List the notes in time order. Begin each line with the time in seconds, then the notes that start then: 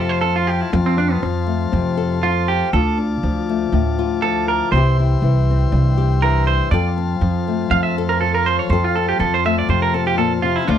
Already playing: F2 C3 F3 A3 C4 A4 F5 A5 C6
0.09 C5
0.21 A4
0.36 F4
0.47 G4
0.61 E4
0.73 F2 C4, muted clean electric guitar stroke
0.86 C4
0.98 C4 D4
1.12 B3
1.22 F2 F3, muted clean electric guitar stroke
1.46 A3
1.72 F2 C3
1.97 A4
2.23 F3 F4
2.48 G4
2.73 D2 F4 A4 A5 D6, muted nylon-string guitar stroke
2.98 D4
3.23 D2 F3
3.49 A3
3.72 D2 A2
3.99 F4
4.22 F3 A4
4.48 A#4
4.72 C2 C3 E3 C4 C5 E5 G5 C6
4.76 E4 G4
5.00 E4
5.22 C2 E3
5.50 C4
5.72 C2 G2
5.98 G4
6.22 E3 A#4
6.47 C5
6.70 F2 A4 D5 F5 A5
6.98 C4
7.21 F2 F3
7.48 A3
7.70 F2 F5, muted nylon-string guitar stroke
7.83 E5
7.98 A4
8.09 A#4
8.21 F3 A4
8.34 A#4
8.46 C5
8.59 C#5
8.70 F2 A4 C5
8.84 F4
8.96 C4 A4
9.09 G4
9.20 F2 F3 A4
9.34 C5
9.45 A3 E5
9.59 D5
9.69 F2 C3 C5
9.82 A#4
9.94 C4 A4
10.07 G4
10.17 A#2 A4
10.42 C3 F4
10.56 E4
10.67 D2 D3 F3 A3 D4 F4 D6